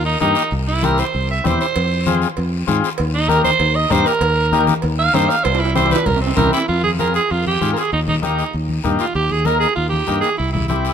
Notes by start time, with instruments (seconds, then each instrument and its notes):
Already playing: fingered electric bass D#2
0.06 alto saxophone D#4
0.20 fingered electric bass G2, transistor combo organ A#3 D#4 G4, alto saxophone D#4, high conga, short guiro
0.35 short guiro
0.51 fingered electric bass C2, long guiro
0.68 alto saxophone E4
0.82 transistor combo organ C4 E4 G4, alto saxophone A#4, high conga, short guiro
0.98 alto saxophone C5, short guiro
1.14 fingered electric bass C2, long guiro
1.31 alto saxophone E5
1.44 fingered electric bass E2, transistor combo organ C4 E4 G4, alto saxophone C5, high conga, low conga, short guiro
1.61 alto saxophone C5, short guiro
1.76 fingered electric bass F2, cowbell, long guiro
2.06 transistor combo organ C4 F4 G#4, high conga, short guiro
2.22 short guiro
2.37 fingered electric bass F2, cowbell, long guiro
2.67 fingered electric bass G#2, transistor combo organ C4 F4 G#4, high conga, short guiro
2.84 short guiro
2.98 fingered electric bass D#2, cowbell, long guiro
3.15 alto saxophone D#4
3.28 transistor combo organ A#3 D#4 G4, alto saxophone A#4, high conga, short guiro
3.43 alto saxophone C5, high conga, short guiro
3.60 fingered electric bass D#2, cowbell, long guiro
3.76 alto saxophone D#5
3.90 fingered electric bass G2, transistor combo organ A#3 D#4 G4, alto saxophone C5, high conga, low conga, short guiro
4.06 alto saxophone A#4, short guiro
4.21 fingered electric bass D#2, cowbell, long guiro
4.52 transistor combo organ A#3 D#4 G4, high conga, short guiro
4.67 high conga, short guiro
4.82 fingered electric bass D#2, cowbell, long guiro
4.99 alto saxophone F5
5.14 fingered electric bass G2, transistor combo organ A#3 D#4 G4, alto saxophone C5, high conga, low timbale, short guiro
5.30 alto saxophone F5, short guiro
5.44 fingered electric bass C2, alto saxophone C5, cowbell, high timbale, long guiro
5.55 high timbale
5.60 alto saxophone E4
5.65 high timbale
5.75 transistor combo organ C4 E4 G4, alto saxophone C5, high conga, low timbale, short guiro
5.86 high timbale
5.91 alto saxophone B4, high conga, short guiro
5.96 high timbale
6.06 fingered electric bass C2, alto saxophone A#4, cowbell, low conga, long guiro
6.16 low timbale
6.22 alto saxophone C4
6.27 low timbale
6.36 fingered electric bass C2, transistor combo organ C4 E4 G4, alto saxophone A#4, high conga, low conga, low timbale, short guiro
6.47 low timbale
6.53 alto saxophone E4, low timbale, short guiro
6.68 fingered electric bass F2, alto saxophone F4, high conga, long guiro
6.84 alto saxophone G#4, high conga
6.99 transistor combo organ C4 F4 G#4, alto saxophone A#4, high conga, short guiro
7.14 alto saxophone G#4, short guiro
7.30 fingered electric bass F2, alto saxophone F4, high conga, long guiro
7.46 alto saxophone G4, high conga
7.61 fingered electric bass G#2, transistor combo organ C4 F4 G#4, high conga, short guiro
7.73 alto saxophone A#4, short guiro
7.78 alto saxophone G#4
7.92 fingered electric bass D#2, alto saxophone D#4, long guiro
8.08 alto saxophone D#4, high conga, low conga
8.22 transistor combo organ A#3 D#4 G4, alto saxophone D#4, high conga, short guiro
8.39 short guiro
8.53 fingered electric bass D#2, high conga, long guiro
8.69 high conga
8.84 fingered electric bass G2, transistor combo organ A#3 D#4 G4, high conga, low conga, short guiro
8.99 alto saxophone F4, short guiro
9.15 fingered electric bass D#2, alto saxophone G4, high conga, long guiro
9.30 alto saxophone G#4, high conga
9.45 transistor combo organ A#3 D#4 A#4, alto saxophone A#4, high conga, short guiro
9.60 alto saxophone G#4, short guiro
9.75 fingered electric bass D#2, alto saxophone F4, high conga, long guiro
9.89 alto saxophone G4, high conga
10.07 fingered electric bass G2, transistor combo organ A#3 D#4 G4, high conga, short guiro
10.21 alto saxophone G#4, short guiro
10.37 fingered electric bass C2, alto saxophone E4, long guiro
10.53 alto saxophone E4, high conga, low conga
10.68 transistor combo organ C4 E4 G4, alto saxophone E4, high conga, short guiro
10.85 short guiro